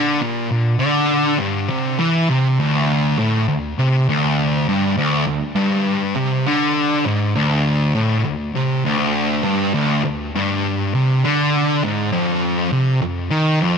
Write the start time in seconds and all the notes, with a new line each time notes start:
Already playing: D3
0.21 A#2
0.51 A#2
0.79 D3
1.39 G2
1.70 C3
1.99 E3
2.29 C3
2.60 D2
3.19 A2
3.48 D2
3.79 C3
4.09 D2
4.69 G2
4.98 D2
5.27 D2
5.56 G2
6.16 C3
6.47 D3
7.05 G#2
7.35 D2
7.95 A2
8.24 D2
8.55 C3
8.85 D2
9.44 G2
9.75 D2
10.05 D2
10.35 G2
10.94 C3
11.25 D3
11.84 G#2
12.13 F2
12.72 C3
13.02 F2
13.30 D#3
13.60 F2